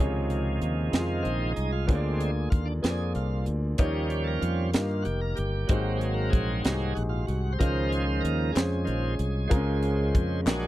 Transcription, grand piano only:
Already playing: C3 C#3 F4 G#4
0.00 C#5
0.91 C4 D#4 G#4 D#5
0.99 F4
1.88 D3 A#3 F4 G#4 C#5
1.95 D5
2.82 A#3 F4 G#4 C5
2.90 D5
3.79 D#3 A#3 D#4 G4 C#5
4.74 A#3 D#4 G4 A#4
5.69 G#2 G#3 D#4 F#4 C5
6.65 G#3 D#4 F#4 G4
6.72 G#4
7.59 C#3 G#3 C#4 F4 C5
8.55 G#3 C#4 F4 C5
9.49 C#3 G#3 C4 F4 A#4
9.56 C#4
10.45 A#2 G#3 D4 F#4 A#4

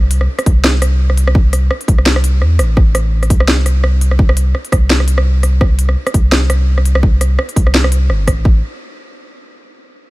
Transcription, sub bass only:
Already playing: C2
0.46 C2
1.88 C2
2.41 E2
2.59 A1
2.77 A1
3.30 C2
4.72 C2
6.14 C2
7.56 C2
8.09 G1
8.27 A1
8.45 A1

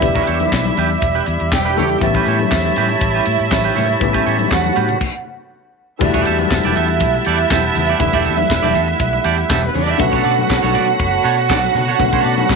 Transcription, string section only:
Already playing: E4 E5
1.52 G4 G5
2.01 E4 E5
4.51 F#4 F#5
6.01 E4 E5
9.67 B3 B4
9.74 C#4 C#5
9.82 D4 D5
9.91 E4 E5
9.99 F#4 F#5

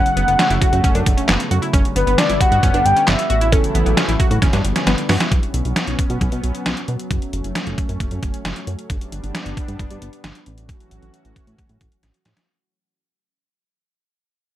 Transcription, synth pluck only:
Already playing: C#4
0.17 B3
0.28 B3
0.39 C#4
0.50 E4
0.61 F#4
0.73 F#4
0.84 C#4
0.95 D4
1.17 C#4
1.29 B3
1.51 F#4
1.62 E4
1.73 C#4
1.96 B3
2.07 B3
2.18 D4
2.29 E4
2.40 F#4
2.52 F#4
2.63 C#4
2.74 D4
2.96 C#4
3.08 B3
3.30 F#4
3.41 E4
3.52 C#4
3.75 B3
3.86 B3
3.97 C#4
4.08 E4
4.20 F#4
4.31 F#4
4.42 C#4
4.53 D4
4.76 C#4
4.87 B3
5.09 F#4
5.20 E4

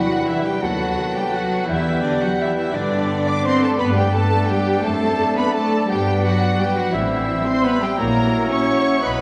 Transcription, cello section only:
Already playing: F#3
0.28 E3
0.45 G3
0.62 F#3
1.16 G3
1.34 F#3
1.69 E3
2.04 D3
2.23 F#3
2.41 E3
2.58 E3
2.75 D3
3.28 D4
3.45 C4
3.63 A3
3.79 B3
3.96 G3
4.14 A3
4.50 G3
4.84 A3
5.37 B3
5.55 A3
5.89 G3
6.23 F#3
6.59 G3
6.77 F#3
6.93 E3
7.47 C4
7.64 B3
7.82 G3
7.98 A#3
8.51 C#4
9.04 B3

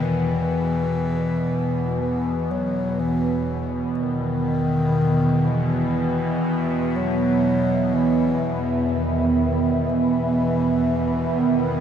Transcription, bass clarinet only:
0.04 E3
2.01 E3
2.51 F#3
3.00 E3
3.99 D#3
5.48 E3
6.96 F#3
7.94 E3
8.93 D#3
9.89 E3
11.40 D#3

